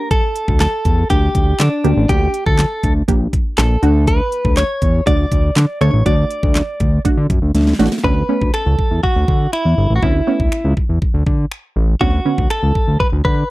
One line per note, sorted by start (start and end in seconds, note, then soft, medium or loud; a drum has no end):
0.00 0.65 A#3 medium
0.00 0.65 D4 medium
0.00 0.66 G4 medium
0.00 0.11 A#4 loud
0.11 0.59 A4 loud
0.11 kick loud
0.11 closed hi-hat medium
0.36 closed hi-hat medium
0.48 0.67 D2 medium
0.48 kick medium
0.60 1.10 A4 loud
0.60 snare medium
0.60 clap loud
0.60 closed hi-hat loud
0.85 1.04 E2 loud
0.85 kick medium
0.85 closed hi-hat medium
1.10 1.29 D2 loud
1.10 1.67 A#3 medium
1.10 1.67 D4 medium
1.10 1.61 G4 medium
1.10 1.67 G4 medium
1.10 kick medium
1.10 closed hi-hat medium
1.35 1.54 D2 medium
1.35 kick loud
1.35 closed hi-hat medium
1.59 1.69 D3 loud
1.59 2.11 D4 medium
1.59 snare medium
1.59 clap loud
1.59 closed hi-hat loud
1.84 1.94 D2 medium
1.84 2.03 A#3 medium
1.84 2.03 D4 medium
1.84 2.03 G4 medium
1.84 closed hi-hat medium
1.97 2.06 A1 loud
2.09 2.28 D2 loud
2.09 2.85 A#3 medium
2.09 2.85 D4 medium
2.09 2.46 G4 loud
2.09 2.85 G4 medium
2.09 kick loud
2.09 closed hi-hat medium
2.34 closed hi-hat medium
2.46 2.65 D2 medium
2.46 2.92 A4 medium
2.46 kick medium
2.59 snare medium
2.59 clap loud
2.59 closed hi-hat loud
2.83 3.03 D2 medium
2.83 kick medium
2.83 closed hi-hat medium
3.08 3.28 A#1 loud
3.08 3.65 A#3 medium
3.08 3.65 D4 medium
3.08 3.65 G4 medium
3.08 kick loud
3.08 closed hi-hat medium
3.33 kick medium
3.33 closed hi-hat medium
3.58 3.77 A#1 medium
3.58 4.04 A4 medium
3.58 snare medium
3.58 clap loud
3.58 closed hi-hat medium
3.82 4.21 D2 loud
3.82 4.62 A3 medium
3.82 4.62 D4 medium
3.82 4.62 F#4 medium
3.82 closed hi-hat medium
4.07 4.57 B4 loud
4.07 kick loud
4.07 closed hi-hat medium
4.32 closed hi-hat medium
4.45 4.64 D2 medium
4.45 kick medium
4.57 5.03 C#5 loud
4.57 snare medium
4.57 clap loud
4.57 closed hi-hat loud
4.82 5.01 E2 medium
4.82 kick medium
4.82 closed hi-hat medium
5.07 5.26 D2 medium
5.07 5.63 A3 medium
5.07 5.63 D4 medium
5.07 5.63 F#4 medium
5.07 5.81 D5 loud
5.07 kick loud
5.07 closed hi-hat medium
5.32 5.51 D2 medium
5.32 kick loud
5.32 closed hi-hat medium
5.56 5.66 D3 loud
5.56 snare medium
5.56 clap loud
5.56 closed hi-hat medium
5.81 5.91 D2 medium
5.81 6.00 A3 medium
5.81 6.00 D4 medium
5.81 6.00 A4 medium
5.81 6.04 C#5 loud
5.81 closed hi-hat medium
5.93 6.03 A1 medium
6.06 6.25 D2 loud
6.06 6.81 A3 medium
6.06 6.81 D4 medium
6.06 6.82 F#4 medium
6.06 7.01 D5 loud
6.06 kick loud
6.06 closed hi-hat medium
6.31 closed hi-hat medium
6.43 6.62 D2 loud
6.43 kick loud
6.55 snare medium
6.55 clap loud
6.55 closed hi-hat loud
6.80 6.99 D2 medium
6.80 kick medium
6.80 closed hi-hat medium
7.05 7.62 A3 medium
7.05 7.62 D4 medium
7.05 7.62 F#4 medium
7.05 kick medium
7.05 closed hi-hat medium
7.17 7.27 D3 loud
7.30 7.39 F#2 medium
7.30 kick loud
7.30 closed hi-hat medium
7.42 7.52 D2 medium
7.55 7.74 D2 loud
7.55 snare medium
7.55 closed hi-hat loud
7.61 snare medium
7.67 snare medium
7.73 snare medium
7.79 7.89 A1 medium
7.79 7.98 A3 medium
7.79 7.98 D4 medium
7.79 7.98 F#4 medium
7.79 snare medium
7.79 closed hi-hat medium
7.86 snare medium
7.92 snare loud
7.98 snare medium
8.04 8.23 D2 loud
8.04 8.23 A3 medium
8.04 8.23 B3 medium
8.04 8.23 C#4 medium
8.04 8.53 B4 loud
8.04 kick loud
8.29 9.04 A3 medium
8.29 9.05 B3 medium
8.29 9.05 C#4 medium
8.42 8.51 D2 medium
8.42 kick medium
8.54 9.03 A4 loud
8.54 finger snap loud
8.66 8.76 C#2 medium
8.79 kick medium
8.91 9.01 E2 medium
9.03 9.53 F#4 loud
9.03 kick medium
9.16 9.25 D2 loud
9.28 9.47 D3 loud
9.28 kick loud
9.53 9.95 E4 medium
9.53 finger snap loud
9.65 9.75 E2 medium
9.78 9.87 G1 loud
9.90 10.00 A1 medium
9.96 10.03 F#4 medium
10.02 10.22 D2 loud
10.02 10.21 A3 medium
10.02 10.21 B3 medium
10.02 10.22 C#4 medium
10.02 10.73 E4 medium
10.02 kick loud
10.27 11.03 A3 medium
10.27 11.03 B3 medium
10.27 11.03 C#4 medium
10.40 10.49 D2 medium
10.40 kick medium
10.52 finger snap loud
10.65 10.74 C#2 loud
10.77 kick medium
10.89 10.99 E2 medium
11.02 kick medium
11.14 11.24 D2 loud
11.27 11.46 D3 medium
11.27 kick medium
11.52 finger snap loud
11.76 11.95 A1 medium
12.01 12.20 D2 loud
12.01 12.20 D3 medium
12.01 12.20 B3 medium
12.01 12.20 C#4 medium
12.01 12.50 F#4 medium
12.01 kick loud
12.25 13.01 D3 medium
12.25 13.01 B3 medium
12.25 13.01 C#4 medium
12.38 12.48 D2 medium
12.38 kick medium
12.50 13.00 A4 loud
12.50 finger snap loud
12.63 12.72 C#2 medium
12.75 kick medium
12.88 12.97 D2 medium
13.00 13.07 B4 loud
13.00 kick medium
13.12 13.22 D2 loud
13.25 13.44 D3 medium
13.25 13.50 B4 loud
13.25 kick medium